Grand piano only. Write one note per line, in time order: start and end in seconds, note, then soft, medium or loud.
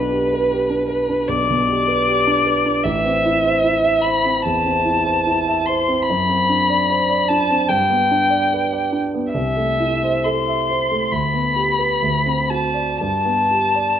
0.00 1.25 B1 soft
0.00 0.23 D4 soft
0.11 0.42 G4 soft
0.33 0.63 B4 soft
0.51 0.82 G4 soft
0.70 1.01 D4 soft
0.88 1.20 B4 soft
1.09 1.40 D4 soft
1.29 2.80 B1 soft
1.50 1.80 B2 soft
1.69 1.99 G4 soft
1.87 2.18 B4 soft
2.08 2.38 G4 soft
2.27 2.57 D4 soft
2.46 2.77 B4 soft
2.66 2.84 D4 soft
2.85 4.39 A1 soft
3.05 3.36 C4 soft
3.25 3.56 E4 soft
3.45 3.76 C5 soft
3.64 3.95 E4 soft
3.85 4.16 E5 soft
4.05 4.36 C5 soft
4.25 4.56 C4 soft
4.45 4.77 E2 soft
4.66 4.97 C4 soft
4.85 5.17 E4 soft
5.05 5.38 C5 soft
5.26 5.59 E4 soft
5.47 5.79 E5 soft
5.68 6.00 C5 soft
5.88 6.08 C4 soft
6.10 7.66 F#2 soft
6.29 6.60 C4 soft
6.49 6.80 D4 soft
6.70 7.01 D5 soft
6.90 7.21 C5 soft
7.10 7.41 D5 soft
7.30 7.62 D4 soft
7.50 7.70 C4 soft
7.69 9.30 G2 soft
7.90 8.22 B3 soft
8.11 8.43 D4 soft
8.30 8.63 D5 soft
8.53 8.85 B4 soft
8.73 9.05 D5 soft
8.92 9.25 D4 soft
9.14 9.34 B3 soft
9.34 11.07 C2 soft
9.56 9.93 A3 soft
9.80 10.16 E4 soft
10.03 10.39 C5 soft
10.26 10.60 A4 soft
10.48 10.81 E5 soft
10.69 11.03 C5 soft
10.91 11.12 A3 soft
11.12 12.00 D2 soft
11.34 11.70 B3 soft
11.56 11.93 G4 soft
11.79 12.02 B4 soft
12.02 12.97 D2 soft
12.26 12.65 C4 soft
12.50 12.90 F#4 soft
12.74 13.00 D5 soft
13.01 14.00 G2 soft
13.25 13.65 B3 soft
13.51 13.91 G4 soft
13.75 14.00 D5 soft